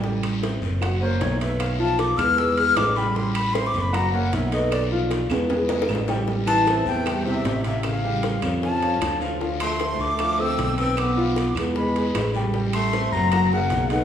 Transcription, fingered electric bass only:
\new Staff \with { instrumentName = "Fingered electric bass" } { \clef bass \time 4/4 \key a \minor \tempo 4 = 154 a,,4. fis,,4. b,,4~ | b,,4. e,4. a,,4~ | a,,4. fis,,4. b,,4~ | b,,4. e,4. a,,4~ |
a,,4. e,4. a,,4~ | a,,4. eis,4. d,4~ | d,4. d,4. b,,4~ | b,,4. e,4. a,,4~ |
a,,4. fis,,4. b,,4 | }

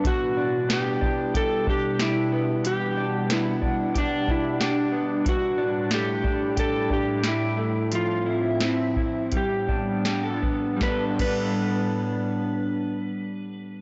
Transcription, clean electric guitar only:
\new Staff \with { instrumentName = "Clean electric guitar" } { \time 4/4 \key g \major \tempo 4 = 91 e8 d'8 b8 d'8 g'8 d'8 g'8 b8 | e8 d'8 b8 d'8 g'8 d'8 g'8 b8 | e8 d'8 a8 d'8 g'8 d'8 g'8 a8 | f8 e'8 c'8 e'8 g8 d'8 g'16 a'16 b8 |
<g b d' a'>8 <g b d' a'>2.~ <g b d' a'>8 | }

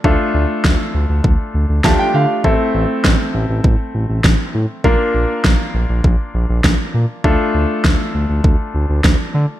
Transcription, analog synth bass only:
\new Staff \with { instrumentName = "Analog synth bass" } { \clef bass \time 4/4 \key d \minor \tempo 4 = 100 d,16 r16 d,16 r16 d,16 r16 d,16 d,16 d,16 r16 d,16 d,16 d,16 r16 d16 r16 | a,,16 r16 a,,16 r16 a,,16 r16 a,,16 a,,16 a,,16 r16 a,,16 a,,16 a,,16 r16 a,16 r16 | bes,,16 r16 bes,,16 r16 bes,,16 r16 bes,,16 bes,,16 bes,,16 r16 bes,,16 bes,,16 bes,,16 r16 bes,16 r16 | d,16 r16 d,16 r16 d,16 r16 d,16 d,16 d,16 r16 d,16 d,16 d,16 r16 d16 r16 | }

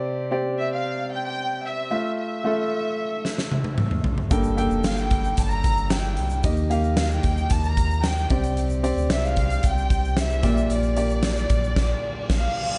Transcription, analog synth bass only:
\new Staff \with { instrumentName = "Analog synth bass" } { \clef bass \time 4/4 \key c \mixolydian \tempo 4 = 113 r1 | r1 | g,,8. f,,16 g,,4 g,,4. c,8 | ees,4. ees,8 ees,4. c,8~ |
c,8. d,16 c,4 c,4. bes,,8 | bes,,4. bes,,8 bes,,8 r8 bes,,8 r8 | }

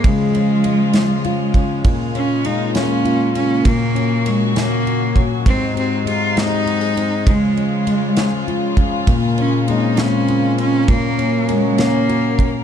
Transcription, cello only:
\new Staff \with { instrumentName = "Cello" } { \time 6/8 \key des \major \tempo 4. = 66 aes2~ aes8 r8 | r8 des'8 ees'8 des'4 des'8 | bes4 aes8 bes4 r8 | c'8 c'8 f'8 ees'4. |
aes2 r4 | r8 des'8 ees'8 des'4 des'8 | bes4 aes8 bes4 r8 | }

